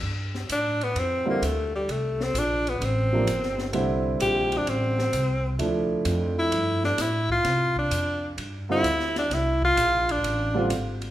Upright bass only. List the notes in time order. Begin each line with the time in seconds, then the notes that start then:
0.02 G2
0.49 A2
0.95 F2
1.42 D2
1.88 C2
2.34 A#1
2.81 A1
3.27 G1
3.73 C2
4.20 A#1
4.66 A1
5.13 C2
5.59 D2
6.05 F2
6.52 G2
6.98 A2
7.44 C3
7.91 F2
8.37 G2
8.84 D2
9.30 C2
9.76 A#1
10.23 A1
10.70 G#1